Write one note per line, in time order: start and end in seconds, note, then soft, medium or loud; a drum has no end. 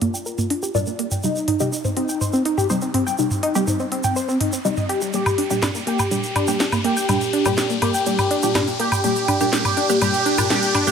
0.00 0.72 A#2 loud
0.00 0.72 G3 medium
0.00 0.13 A#3 loud
0.00 0.72 D4 loud
0.00 1.14 F4 loud
0.00 mid tom medium
0.00 open hi-hat medium
0.00 riser medium
0.14 0.23 G5 medium
0.14 shaker medium
0.26 0.38 A#4 medium
0.26 shaker medium
0.38 0.47 A#3 loud
0.38 mid tom medium
0.38 shaker soft
0.50 0.62 D4 loud
0.50 open hi-hat loud
0.63 0.72 G4 loud
0.63 shaker medium
0.75 1.21 A#2 medium
0.75 1.21 G3 medium
0.75 1.21 D4 loud
0.75 0.84 A#4 medium
0.75 mid tom medium
0.75 shaker medium
0.86 0.93 A#3 medium
0.86 shaker soft
0.99 1.08 A#3 loud
0.99 open hi-hat medium
1.11 1.21 G5 medium
1.11 mid tom medium
1.11 shaker medium
1.23 1.57 C3 medium
1.23 1.57 G3 medium
1.23 1.35 G3 medium
1.23 1.57 D#4 medium
1.23 1.87 D#4 loud
1.23 shaker medium
1.36 shaker soft
1.48 1.60 D#4 loud
1.48 mid tom medium
1.48 open hi-hat loud
1.60 2.67 C3 loud
1.60 2.67 G3 medium
1.60 2.67 D#4 loud
1.60 1.69 G4 loud
1.60 shaker medium
1.72 1.84 D#4 medium
1.72 shaker medium
1.84 1.90 C4 medium
1.84 mid tom medium
1.84 shaker soft
1.97 2.08 C4 loud
1.97 2.85 D#4 loud
1.97 open hi-hat medium
2.09 2.18 G5 medium
2.09 shaker medium
2.21 2.33 C5 medium
2.21 mid tom medium
2.21 shaker medium
2.33 2.43 C4 loud
2.33 shaker soft
2.45 2.57 D#4 loud
2.45 open hi-hat loud
2.58 2.67 G4 loud
2.58 mid tom medium
2.58 shaker medium
2.70 3.16 C3 loud
2.70 3.16 G3 medium
2.70 3.16 D#4 loud
2.70 2.79 C5 medium
2.70 shaker medium
2.81 2.88 C4 medium
2.81 shaker soft
2.94 3.04 C4 loud
2.94 mid tom medium
2.94 open hi-hat medium
3.07 3.16 G5 medium
3.07 shaker medium
3.18 3.52 C3 medium
3.18 3.52 G3 medium
3.18 3.30 G3 medium
3.18 3.52 D#4 medium
3.18 shaker medium
3.31 mid tom medium
3.31 shaker soft
3.43 3.55 D#4 loud
3.43 open hi-hat loud
3.55 4.62 C3 loud
3.55 4.62 G3 medium
3.55 4.62 D#4 loud
3.55 3.65 G4 loud
3.55 shaker medium
3.67 5.04 C4 loud
3.67 3.79 D#4 medium
3.67 mid tom medium
3.67 shaker medium
3.80 3.85 C4 medium
3.80 shaker soft
3.92 4.03 C4 loud
3.92 open hi-hat medium
4.04 4.13 G5 medium
4.04 mid tom medium
4.04 shaker medium
4.16 4.28 C5 medium
4.16 shaker medium
4.28 4.38 C4 medium
4.28 shaker soft
4.41 4.52 D#4 medium
4.41 mid tom medium
4.41 open hi-hat loud
4.53 4.58 C4 medium
4.53 shaker medium
4.65 5.11 C3 loud
4.65 5.11 G3 medium
4.65 4.74 G3 medium
4.65 5.11 D#4 loud
4.65 shaker medium
4.77 4.86 D#5 medium
4.77 mid tom medium
4.77 shaker soft
4.89 5.01 G4 loud
4.89 open hi-hat medium
5.01 5.12 G3 medium
5.01 shaker medium
5.13 5.47 A#2 medium
5.13 5.47 G3 medium
5.13 5.25 G3 medium
5.13 5.47 D4 medium
5.13 5.77 G4 loud
5.13 closed hi-hat medium
5.13 shaker medium
5.26 closed hi-hat soft
5.26 mid tom loud
5.26 low woodblock medium
5.26 shaker soft
5.38 5.50 D4 medium
5.38 open hi-hat loud
5.50 6.09 A#2 medium
5.50 6.09 G3 medium
5.50 6.09 D4 loud
5.50 5.60 G4 medium
5.50 closed hi-hat soft
5.50 shaker medium
5.62 5.74 D4 medium
5.62 snare loud
5.62 closed hi-hat medium
5.62 mid tom medium
5.62 low woodblock medium
5.62 shaker medium
5.75 5.80 A#3 medium
5.75 closed hi-hat soft
5.75 shaker soft
5.87 5.99 A#3 medium
5.87 6.09 G4 medium
5.87 open hi-hat medium
5.99 6.08 G5 medium
5.99 closed hi-hat soft
5.99 mid tom medium
5.99 low woodblock medium
5.99 shaker medium
6.11 6.45 A#2 medium
6.11 6.23 G3 medium
6.11 6.45 G3 medium
6.11 6.45 D4 medium
6.11 6.75 G4 medium
6.11 closed hi-hat medium
6.11 shaker medium
6.23 closed hi-hat soft
6.23 shaker soft
6.36 6.47 D4 loud
6.36 mid tom loud
6.36 open hi-hat loud
6.36 low woodblock medium
6.47 7.07 A#2 medium
6.47 7.07 G3 medium
6.47 7.07 D4 loud
6.47 6.57 G4 medium
6.47 closed hi-hat soft
6.47 shaker medium
6.60 6.72 D4 medium
6.60 snare loud
6.60 closed hi-hat medium
6.60 shaker medium
6.72 6.78 A#3 medium
6.72 closed hi-hat soft
6.72 mid tom loud
6.72 low woodblock medium
6.72 shaker soft
6.84 6.96 A#3 medium
6.84 7.07 G4 medium
6.84 open hi-hat medium
6.97 7.06 G5 medium
6.97 closed hi-hat soft
6.97 shaker medium
7.09 7.43 A#2 medium
7.09 7.21 G3 medium
7.09 7.43 G3 medium
7.09 7.43 D4 medium
7.09 7.72 G4 loud
7.09 closed hi-hat medium
7.09 mid tom medium
7.09 low woodblock medium
7.09 shaker medium
7.21 closed hi-hat soft
7.21 shaker soft
7.33 7.45 D4 loud
7.33 open hi-hat loud
7.45 8.04 A#2 medium
7.45 8.04 G3 medium
7.45 8.04 D4 loud
7.45 7.55 G4 loud
7.45 closed hi-hat soft
7.45 mid tom loud
7.45 low woodblock medium
7.45 shaker medium
7.58 7.69 D4 medium
7.58 snare loud
7.58 closed hi-hat medium
7.58 shaker medium
7.70 7.75 A#3 medium
7.70 closed hi-hat soft
7.70 shaker soft
7.82 7.94 A#3 medium
7.82 8.04 G4 medium
7.82 mid tom loud
7.82 open hi-hat medium
7.82 low woodblock medium
7.94 8.03 G5 medium
7.94 closed hi-hat soft
7.94 shaker medium
8.06 8.40 A#2 medium
8.06 8.18 G3 medium
8.06 8.40 G3 medium
8.06 8.40 D4 medium
8.06 8.70 G4 loud
8.06 closed hi-hat medium
8.06 shaker medium
8.18 closed hi-hat soft
8.18 mid tom loud
8.18 low woodblock medium
8.18 shaker soft
8.31 8.42 D4 loud
8.31 open hi-hat loud
8.43 9.02 A#2 loud
8.43 9.02 G3 medium
8.43 9.02 D4 loud
8.43 8.52 G4 loud
8.43 closed hi-hat soft
8.43 shaker medium
8.55 8.67 D4 medium
8.55 snare loud
8.55 closed hi-hat medium
8.55 mid tom medium
8.55 low woodblock medium
8.55 shaker medium
8.67 8.73 A#3 medium
8.67 closed hi-hat soft
8.67 shaker soft
8.79 8.91 A#3 loud
8.79 9.02 G4 medium
8.79 open hi-hat medium
8.92 9.01 G5 medium
8.92 closed hi-hat soft
8.92 mid tom loud
8.92 low woodblock medium
8.92 shaker medium
9.04 9.38 A#2 medium
9.04 9.16 G3 medium
9.04 9.38 G3 medium
9.04 9.38 D4 medium
9.04 9.51 G4 loud
9.04 closed hi-hat medium
9.04 shaker medium
9.16 closed hi-hat soft
9.16 shaker soft
9.28 9.40 D4 loud
9.28 mid tom loud
9.28 open hi-hat loud
9.28 low woodblock medium
9.41 9.51 A#2 loud
9.41 9.51 G3 medium
9.41 9.51 D4 loud
9.41 9.50 G4 loud
9.41 closed hi-hat soft
9.41 shaker medium
9.53 9.86 A#2 medium
9.53 9.64 G3 medium
9.53 9.86 G3 medium
9.53 9.86 D4 medium
9.53 10.00 G4 loud
9.53 snare loud
9.53 closed hi-hat medium
9.53 shaker medium
9.65 closed hi-hat soft
9.65 mid tom medium
9.65 low woodblock soft
9.65 shaker soft
9.77 9.89 D4 loud
9.77 open hi-hat medium
9.89 10.00 A#2 loud
9.89 10.00 G3 medium
9.89 10.00 D4 loud
9.89 9.99 G4 loud
9.89 closed hi-hat soft
9.89 shaker medium
10.02 10.35 A#2 medium
10.02 10.13 G3 medium
10.02 10.35 G3 medium
10.02 10.35 D4 medium
10.02 10.48 G4 loud
10.02 closed hi-hat medium
10.02 mid tom loud
10.02 low woodblock medium
10.02 shaker medium
10.14 closed hi-hat soft
10.14 shaker soft
10.26 10.38 D4 loud
10.26 open hi-hat loud
10.38 10.48 A#2 loud
10.38 10.48 G3 medium
10.38 10.48 D4 loud
10.38 10.47 G4 loud
10.38 closed hi-hat soft
10.38 mid tom loud
10.38 low woodblock medium
10.38 shaker medium
10.50 10.84 A#2 medium
10.50 10.62 G3 medium
10.50 10.84 G3 medium
10.50 10.84 D4 medium
10.50 10.91 G4 loud
10.50 snare loud
10.50 closed hi-hat medium
10.50 shaker medium
10.62 closed hi-hat soft
10.62 shaker soft
10.75 10.86 D4 loud
10.75 mid tom medium
10.75 open hi-hat medium
10.75 low woodblock medium
10.87 10.91 A#2 loud
10.87 10.91 G3 medium
10.87 10.91 D4 loud
10.87 10.91 G4 loud
10.87 closed hi-hat soft
10.87 shaker medium